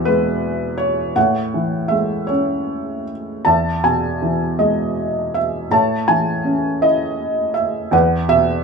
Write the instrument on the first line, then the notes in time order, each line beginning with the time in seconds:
felt piano
Already playing: E2 B2 E3 B4 E5 F#5
0.05 G#3 B4
0.78 C#5
1.16 A2 C#5 F#5
1.54 E3
1.88 G#3 E5
2.27 C#4 C#5
3.45 E2 E5 A5
3.84 B2 G#5
4.22 E3
4.59 G#3 D#5
5.34 E5
5.71 A2 C#5 A5
6.08 E3 G#5
6.44 C#4
6.81 E4 D#5
7.54 E5
7.91 E2 B4 F#5
8.28 B2 E5